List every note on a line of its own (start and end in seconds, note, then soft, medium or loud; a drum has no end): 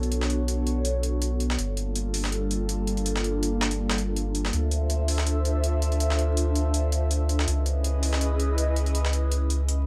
0.00 1.57 B1 medium
0.00 1.57 B3 medium
0.00 1.57 D4 medium
0.00 1.57 F#4 medium
0.00 1.57 A4 medium
0.00 1.57 C#5 loud
0.00 closed hi-hat soft
0.12 closed hi-hat medium
0.21 snare soft
0.30 closed hi-hat medium
0.48 closed hi-hat medium
0.67 closed hi-hat medium
0.85 closed hi-hat medium
1.03 closed hi-hat medium
1.22 closed hi-hat medium
1.40 closed hi-hat medium
1.50 snare medium
1.59 4.52 G1 medium
1.59 4.51 G3 medium
1.59 4.51 A#3 medium
1.59 4.51 D4 medium
1.59 4.51 F4 medium
1.59 4.51 A4 loud
1.59 closed hi-hat medium
1.77 closed hi-hat medium
1.95 closed hi-hat medium
2.14 open hi-hat medium
2.24 snare soft
2.32 closed hi-hat medium
2.51 closed hi-hat medium
2.69 closed hi-hat medium
2.87 closed hi-hat medium
2.97 closed hi-hat soft
3.06 closed hi-hat medium
3.16 snare soft
3.24 closed hi-hat medium
3.43 closed hi-hat medium
3.61 snare loud
3.71 closed hi-hat medium
3.90 snare medium
3.98 closed hi-hat medium
4.16 closed hi-hat medium
4.35 closed hi-hat medium
4.45 snare medium
4.53 7.46 D2 medium
4.53 7.46 D4 medium
4.53 7.46 F4 medium
4.53 7.46 A4 medium
4.53 7.46 C5 medium
4.53 7.46 E5 loud
4.53 closed hi-hat medium
4.71 closed hi-hat medium
4.90 closed hi-hat medium
5.08 open hi-hat medium
5.18 snare soft
5.27 closed hi-hat medium
5.45 closed hi-hat medium
5.64 closed hi-hat medium
5.82 closed hi-hat medium
5.92 closed hi-hat soft
6.00 closed hi-hat medium
6.10 snare soft
6.19 closed hi-hat medium
6.37 closed hi-hat medium
6.55 closed hi-hat medium
6.74 closed hi-hat medium
6.92 closed hi-hat medium
7.11 closed hi-hat medium
7.29 closed hi-hat medium
7.39 snare medium
7.48 9.87 C#2 medium
7.48 9.87 C#4 medium
7.48 9.87 E4 medium
7.48 9.87 G#4 medium
7.48 9.87 B4 medium
7.48 9.87 D#5 loud
7.48 closed hi-hat medium
7.66 closed hi-hat medium
7.84 closed hi-hat medium
8.03 open hi-hat medium
8.13 snare medium
8.21 closed hi-hat medium
8.40 closed hi-hat medium
8.58 closed hi-hat medium
8.76 closed hi-hat medium
8.86 closed hi-hat soft
8.95 closed hi-hat medium
9.05 snare soft
9.13 closed hi-hat medium
9.31 closed hi-hat medium
9.50 closed hi-hat medium
9.68 closed hi-hat medium